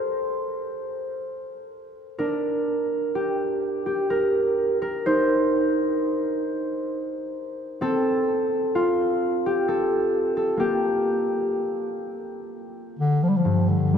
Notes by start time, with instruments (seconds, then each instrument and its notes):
Already playing: harp G4 A4 C5
2.19 harp D4 A#4
3.15 harp G4
3.86 harp G4
4.10 harp A#4
4.82 harp A#4
5.06 harp D#4 C5
7.81 harp C4 A4
8.75 harp F4
9.46 harp G4
9.68 harp A4
10.37 harp A4
10.57 harp A#3 G4
12.99 bass clarinet D3
13.23 bass clarinet F3
13.29 bass clarinet G3
13.37 bass clarinet F3
13.45 harp G2
13.68 bass clarinet D3
13.93 harp D3, bass clarinet G3